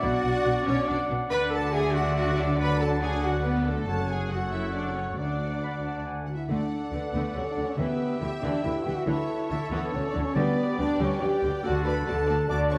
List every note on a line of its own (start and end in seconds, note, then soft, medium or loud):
0.00 0.11 B1 medium
0.00 0.11 B2 medium
0.00 1.27 F#3 medium
0.00 1.26 D4 medium
0.00 0.65 F#4 loud
0.00 1.27 D5 medium
0.00 0.89 D5 medium
0.00 1.27 F#5 medium
0.00 0.66 F#5 medium
0.00 0.67 F#5 medium
0.25 0.33 B1 medium
0.25 0.33 B2 medium
0.46 0.54 B1 medium
0.46 0.55 B2 medium
0.66 0.75 B1 medium
0.66 0.76 B2 medium
0.66 0.88 C#4 medium
0.66 0.88 C#5 medium
0.87 0.97 B1 medium
0.87 0.97 B2 medium
0.87 1.09 D4 medium
0.87 1.10 D5 medium
0.87 0.97 D5 medium
0.87 1.34 F#5 medium
1.10 1.18 B1 medium
1.10 1.19 B2 medium
1.30 3.84 D2 medium
1.30 3.84 D3 medium
1.30 3.72 F#3 medium
1.30 3.72 D4 medium
1.30 1.51 B4 loud
1.30 2.43 D5 medium
1.30 3.71 D5 medium
1.30 1.73 D5 medium
1.30 3.63 F#5 medium
1.30 1.40 B5 loud
1.52 1.74 A4 medium
1.52 1.73 A5 medium
1.73 1.94 G#4 loud
1.73 2.57 E5 medium
1.73 1.95 G#5 medium
1.95 2.15 F#4 medium
1.95 2.16 F#5 medium
1.95 2.15 F#5 medium
2.16 2.37 F#4 loud
2.16 2.37 F#5 medium
2.16 2.38 F#5 medium
2.37 2.59 D4 medium
2.37 2.59 D5 medium
2.37 2.60 D5 medium
2.58 2.80 B4 medium
2.58 3.15 D5 medium
2.58 3.84 F#5 medium
2.58 2.81 B5 medium
2.80 2.89 A4 medium
2.80 3.02 A5 medium
3.01 3.23 G#4 medium
3.01 3.23 G#5 medium
3.23 3.45 F#4 medium
3.23 3.45 F#5 medium
3.43 3.66 B3 medium
3.43 3.65 B4 medium
3.43 3.66 B4 medium
3.43 3.90 D5 medium
3.65 3.88 A3 medium
3.65 3.87 A4 medium
3.87 5.13 F#1 medium
3.87 5.14 F#2 medium
3.87 4.28 F#3 medium
3.87 4.28 C#4 medium
3.87 3.98 A4 medium
3.87 4.28 C#5 medium
3.87 4.31 C#5 medium
3.87 4.28 F#5 medium
3.87 4.09 A5 medium
4.08 4.31 G#4 medium
4.08 4.30 G#5 medium
4.08 4.19 G#5 medium
4.29 5.16 F#3 soft
4.29 5.17 C#4 soft
4.29 4.52 F#4 medium
4.29 5.16 A4 medium
4.29 5.16 C#5 soft
4.29 4.51 F#5 medium
4.29 5.16 F#5 medium
4.29 4.53 F#5 medium
4.52 4.73 E4 medium
4.52 4.73 E5 medium
4.52 4.74 E5 medium
4.74 4.95 D4 medium
4.74 4.96 D5 medium
4.74 4.95 D5 soft
4.96 5.04 C#4 medium
4.96 5.18 C#5 soft
4.96 5.05 C#5 soft
5.17 6.27 D2 soft
5.17 6.28 A3 soft
5.17 6.03 D4 medium
5.17 6.28 D4 soft
5.17 6.25 D5 soft
5.17 6.04 D5 soft
5.17 6.25 F#5 soft
5.17 5.57 F#5 soft
5.64 5.73 B5 medium
5.84 6.05 A5 soft
6.06 6.27 G#5 soft
6.26 6.34 F#4 soft
6.26 6.29 F#5 soft
6.26 6.49 F#5 soft
6.34 6.50 E4 medium
6.34 6.48 E5 soft
6.49 6.57 D2 medium
6.49 6.57 D3 medium
6.49 6.69 A3 medium
6.49 6.90 D4 medium
6.49 7.75 A4 soft
6.49 6.90 D5 medium
6.49 7.75 D5 soft
6.49 7.74 F#5 soft
6.91 7.01 D2 soft
6.91 7.00 D3 soft
6.91 7.01 A3 soft
6.91 7.13 D4 medium
6.91 7.38 B4 medium
6.91 7.00 D5 medium
7.12 7.22 D2 medium
7.12 7.22 D3 medium
7.12 7.34 A3 medium
7.12 7.22 B3 medium
7.12 7.35 B4 medium
7.34 7.43 D2 soft
7.34 7.43 D3 soft
7.34 7.44 G3 soft
7.34 7.49 C#4 medium
7.34 7.78 A4 soft
7.34 7.50 C#5 soft
7.49 7.56 D4 medium
7.49 7.64 D5 medium
7.57 7.65 D2 soft
7.57 7.65 D3 soft
7.57 7.65 A3 soft
7.64 7.71 C#4 medium
7.64 7.79 C#5 medium
7.77 7.86 D2 medium
7.77 8.39 D3 medium
7.77 7.87 D3 medium
7.77 7.99 E3 medium
7.77 8.20 B3 medium
7.77 9.08 G4 soft
7.77 8.23 B4 medium
7.77 8.22 B4 medium
7.77 9.05 E5 medium
7.77 9.07 E5 medium
7.77 9.05 G5 medium
8.19 8.29 D2 soft
8.19 8.29 D3 soft
8.19 8.30 E3 soft
8.19 8.29 E4 medium
8.19 8.67 G4 medium
8.19 8.42 E5 medium
8.42 8.51 D2 medium
8.42 8.51 D3 medium
8.42 8.63 E3 medium
8.42 8.63 D4 medium
8.42 8.65 D5 medium
8.63 8.72 D2 soft
8.63 8.72 D3 soft
8.63 8.85 E4 medium
8.63 9.52 B4 medium
8.63 8.72 E5 medium
8.85 8.94 D2 medium
8.85 8.94 D3 soft
8.85 8.94 E3 soft
8.85 8.92 G4 medium
8.85 8.93 G5 medium
8.93 9.08 F#4 medium
8.93 9.07 F#5 medium
9.06 9.15 D2 medium
9.06 9.15 D3 medium
9.06 9.27 E3 medium
9.06 9.49 E4 medium
9.06 10.33 A4 medium
9.06 10.32 C#5 medium
9.06 10.38 C#5 medium
9.06 9.48 E5 medium
9.06 10.33 A5 medium
9.49 9.58 D2 soft
9.49 9.59 D3 soft
9.49 9.59 E3 medium
9.49 9.72 E4 medium
9.49 10.34 A4 medium
9.49 9.71 E5 medium
9.71 9.80 D2 medium
9.71 9.80 D3 medium
9.71 9.91 E3 medium
9.71 9.92 B3 medium
9.71 9.93 B4 medium
9.92 10.02 D2 medium
9.92 10.00 D3 medium
9.92 10.01 D3 medium
9.92 10.08 C#4 medium
9.92 10.07 C#5 medium
10.07 10.23 D4 medium
10.07 10.21 D5 medium
10.13 10.24 D2 medium
10.13 10.22 D3 medium
10.13 10.21 E3 medium
10.22 10.36 C#4 medium
10.22 10.36 C#5 medium
10.35 10.45 D2 medium
10.35 10.96 D3 medium
10.35 10.44 D3 medium
10.35 10.56 G3 medium
10.35 10.79 B3 medium
10.35 11.62 G4 medium
10.35 10.79 B4 medium
10.35 10.77 D5 medium
10.35 11.62 D5 medium
10.35 11.64 D5 medium
10.35 11.62 G5 medium
10.78 10.88 D2 medium
10.78 10.87 D3 medium
10.78 10.86 G3 medium
10.78 11.00 D4 medium
10.78 11.21 B4 medium
10.78 11.00 D5 medium
11.00 11.09 D2 medium
11.00 11.09 D3 medium
11.00 11.20 G3 medium
11.00 11.22 C#4 medium
11.00 11.22 C#5 medium
11.21 11.30 D2 medium
11.21 11.29 D3 medium
11.21 11.29 F#3 medium
11.21 11.64 G4 medium
11.21 11.65 B4 medium
11.21 11.65 G5 medium
11.42 11.52 D2 medium
11.42 11.52 D3 medium
11.42 11.50 G3 medium
11.63 12.03 D2 medium
11.63 12.03 D3 medium
11.63 11.72 A3 medium
11.63 11.72 F#4 medium
11.63 11.85 F#4 medium
11.63 12.50 A4 medium
11.63 11.72 D5 medium
11.63 12.78 F#5 medium
11.63 11.87 F#5 medium
11.63 12.78 A5 medium
11.85 11.94 A3 medium
11.85 11.94 F#4 medium
11.85 11.95 B4 medium
11.85 11.93 D5 medium
11.85 12.08 B5 medium
12.06 12.46 D2 medium
12.06 12.46 D3 medium
12.06 12.16 A3 medium
12.06 12.15 F#4 medium
12.06 12.49 A4 medium
12.06 12.14 D5 medium
12.06 12.50 A5 medium
12.27 12.37 A3 medium
12.27 12.37 F#4 medium
12.27 12.35 D5 medium
12.49 12.78 D2 medium
12.49 12.78 D3 medium
12.49 12.59 A3 medium
12.49 12.78 F#4 medium
12.49 12.59 F#4 medium
12.49 12.71 D5 loud
12.49 12.58 D5 medium
12.49 12.59 D6 medium
12.71 12.78 A3 medium
12.71 12.78 F#4 medium
12.71 12.78 C#5 medium
12.71 12.78 D5 medium
12.71 12.78 C#6 medium